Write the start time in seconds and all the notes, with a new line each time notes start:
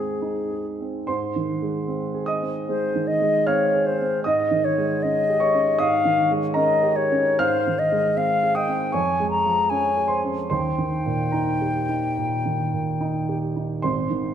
Already playing: G#2 G#3 C4 D#4 G#4
0.22 D#4
0.51 G#4
0.81 C4
1.07 G#2 C5 C6
1.36 D#3
1.62 G#3
1.88 C4
2.14 G#4
2.26 D#5 D#6
2.42 C4
2.67 G#3 C5
2.95 D#3
3.07 D#5
3.21 G#3
3.47 C4 C#5 F5 F6
3.74 G#4
3.86 C5
4.01 C4
4.24 G#2 D#5 D#6
4.51 D#3
4.65 C#5
4.78 G#3
5.03 C#4 D#5
5.30 G4
5.40 C#5 C#6
5.54 C#4
5.79 G#2 D#5 F5 D#6
6.05 D#3
6.31 G#3
6.54 C#4 A#4 D#5 A#5
6.83 G4
6.96 C#5
7.12 C#4
7.39 G#2 C5 F5 F6
7.67 D#3
7.79 D#5
7.92 G#3
8.16 C4 F5
8.43 G#4
8.55 D#5 G5 D#6
8.68 C4
8.92 F2 C#5 G#5 C#6
9.20 G#3
9.31 A#5
9.46 F3
9.70 C#4 G#5
9.97 G#4
10.08 C5 C6
10.24 C#4
10.50 D#2 C5 G5 C6
10.78 D#3
11.06 A#2
11.32 D#4 A#4 A#5
11.62 G4
11.89 D#4
12.18 A#2
12.46 D#3
12.73 A#2
13.01 D#4
13.29 G4
13.56 D#4
13.82 G#1 C5 C6
14.10 D#3